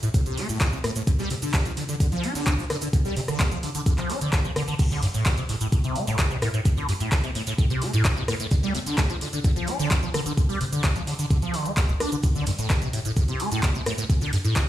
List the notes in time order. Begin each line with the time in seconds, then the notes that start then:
0.03 A2, closed hi-hat, cabasa
0.14 A2, kick, closed hi-hat, cabasa, shaker
0.26 C3, closed hi-hat, cabasa
0.37 A3, snare, open hi-hat, shaker
0.49 A2, closed hi-hat, cabasa
0.60 A2, kick, snare, clap, closed hi-hat, cabasa, shaker
0.73 C3, cabasa
0.84 A2, cross-stick, open hi-hat, shaker
0.96 A2, closed hi-hat, cabasa
1.07 D3, kick, closed hi-hat, cabasa, shaker
1.19 G3, snare, cabasa
1.30 C3, snare, open hi-hat, shaker
1.42 D3, closed hi-hat, cabasa
1.54 A3, kick, snare, clap, closed hi-hat, cabasa, shaker
1.66 F3, closed hi-hat, cabasa
1.77 D3, snare, open hi-hat, shaker
1.89 D3, closed hi-hat, cabasa
2.00 D3, kick, closed hi-hat, cabasa, shaker
2.12 F3, closed hi-hat, cabasa
2.23 D4, open hi-hat, shaker
2.35 D3, snare, closed hi-hat, cabasa
2.46 D3, kick, snare, clap, closed hi-hat, cabasa, shaker
2.58 F3, cabasa, shaker
2.70 D3, cross-stick, snare, open hi-hat
2.81 D3, snare, closed hi-hat, cabasa, shaker
2.93 D3, kick, closed hi-hat, cabasa, shaker
3.05 G3, snare, cabasa
3.16 C3, snare, open hi-hat, shaker
3.28 D3, cross-stick, closed hi-hat, cabasa
3.39 A3, kick, snare, clap, closed hi-hat, cabasa, shaker
3.51 F3, closed hi-hat, cabasa
3.62 D3, snare, open hi-hat, shaker
3.75 D3, closed hi-hat, cabasa
3.86 D3, kick, closed hi-hat, cabasa, shaker
3.98 F3, clap, closed hi-hat, cabasa
4.10 D4, snare, open hi-hat, shaker
4.21 D3, closed hi-hat, cabasa
4.33 D3, kick, snare, clap, closed hi-hat, cabasa, shaker
4.45 F3, cabasa
4.56 D3, cross-stick, open hi-hat, shaker
4.68 D3, open hi-hat, cabasa
4.79 A2, kick, closed hi-hat, crash, cabasa, shaker
4.91 D3, snare, cabasa
5.02 G2, snare, open hi-hat, shaker
5.14 A2, closed hi-hat, cabasa
5.26 E3, kick, snare, clap, closed hi-hat, cabasa, shaker
5.38 C3, closed hi-hat, cabasa
5.49 A2, snare, open hi-hat, shaker
5.61 A2, closed hi-hat, cabasa
5.72 A2, kick, closed hi-hat, cabasa, shaker
5.84 C3, closed hi-hat, cabasa
5.96 A3, open hi-hat, shaker
6.07 A2, closed hi-hat, cabasa
6.18 A2, kick, snare, clap, closed hi-hat, cabasa, shaker
6.31 C3, cabasa
6.42 A2, cross-stick, open hi-hat, shaker
6.54 A2, closed hi-hat, cabasa
6.65 A2, kick, closed hi-hat, cabasa, shaker
6.77 D3, closed hi-hat, cabasa
6.88 G2, open hi-hat, shaker
7.00 A2, closed hi-hat, cabasa
7.12 E3, kick, snare, clap, closed hi-hat, cabasa, shaker
7.24 C3, closed hi-hat, cabasa
7.35 A2, snare, open hi-hat, shaker
7.46 A2, closed hi-hat, cabasa
7.58 A2, kick, closed hi-hat, cabasa, shaker
7.70 C3, closed hi-hat, cabasa
7.81 A3, snare, open hi-hat, shaker
7.93 A2, closed hi-hat, cabasa
8.04 kick, snare, clap, closed hi-hat, cabasa, shaker
8.17 C3, cabasa
8.28 A2, cross-stick, open hi-hat, shaker
8.40 A2, closed hi-hat, cabasa
8.51 D3, kick, closed hi-hat, cabasa, shaker
8.63 G3, snare, cabasa
8.74 C3, snare, open hi-hat, shaker
8.86 D3, closed hi-hat, cabasa
8.98 A3, kick, snare, clap, closed hi-hat, cabasa, shaker
9.10 F3, closed hi-hat, cabasa
9.21 D3, snare, open hi-hat, shaker
9.33 D3, closed hi-hat, cabasa
9.44 D3, kick, closed hi-hat, cabasa, shaker
9.56 F3, closed hi-hat, cabasa
9.67 D4, open hi-hat, shaker
9.79 D3, closed hi-hat, cabasa
9.90 kick, snare, clap, closed hi-hat, cabasa, shaker
10.03 F3, cabasa
10.14 D3, cross-stick, open hi-hat, shaker
10.26 D3, closed hi-hat, cabasa
10.37 D3, kick, closed hi-hat, cabasa, shaker
10.49 G3, closed hi-hat, cabasa
10.61 C3, open hi-hat, shaker
10.72 D3, closed hi-hat, cabasa
10.84 A3, kick, snare, clap, closed hi-hat, cabasa, shaker
10.96 F3, closed hi-hat, cabasa
11.07 D3, snare, open hi-hat, shaker
11.19 D3, closed hi-hat, cabasa
11.30 D3, kick, closed hi-hat, cabasa, shaker
11.42 F3, closed hi-hat, cabasa
11.53 D3, snare, open hi-hat, shaker
11.65 A3, closed hi-hat, cabasa
11.77 D3, kick, snare, clap, closed hi-hat, cabasa, shaker
11.89 D2, cabasa
12.00 D4, cross-stick, open hi-hat, shaker
12.12 D3, closed hi-hat, cabasa
12.23 A2, kick, closed hi-hat, ride, cabasa, shaker
12.35 D3, snare, cabasa
12.46 G2, snare, open hi-hat, ride, shaker
12.59 A2, closed hi-hat, cabasa
12.69 E3, kick, snare, clap, closed hi-hat, ride, cabasa, shaker
12.82 C3, closed hi-hat, cabasa
12.93 A2, snare, open hi-hat, ride, shaker
13.05 A2, closed hi-hat, cabasa
13.16 A2, kick, closed hi-hat, ride, cabasa, shaker
13.28 C3, closed hi-hat, cabasa
13.40 A3, open hi-hat, ride, shaker
13.52 A2, closed hi-hat, cabasa
13.63 A2, kick, snare, clap, closed hi-hat, ride, cabasa, shaker
13.75 C3, cabasa
13.86 A2, cross-stick, open hi-hat, ride, shaker
13.98 A2, closed hi-hat, cabasa
14.10 A2, kick, closed hi-hat, ride, cabasa, shaker
14.21 D3, closed hi-hat, cabasa
14.33 G2, open hi-hat, ride, shaker
14.45 A2, closed hi-hat, cabasa
14.56 E3, kick, snare, clap, closed hi-hat, ride, cabasa, shaker